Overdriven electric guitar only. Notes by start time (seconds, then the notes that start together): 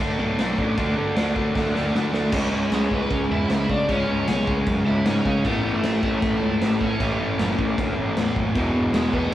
2.72 G#3 G#4
2.92 B3 B4
3.11 C#4 C#5
3.31 E4 E5
3.50 E4 E5
3.69 D4 D5
3.90 C#4 C#5
4.29 C#4 C#5
4.86 E4 E5
5.06 C#4 C#5
5.25 C#4 C#5
5.44 B3 B4
5.74 A3 A4
6.03 A3 A4
6.81 C#4 C#5
8.94 G#3 G#4
9.14 B3 B4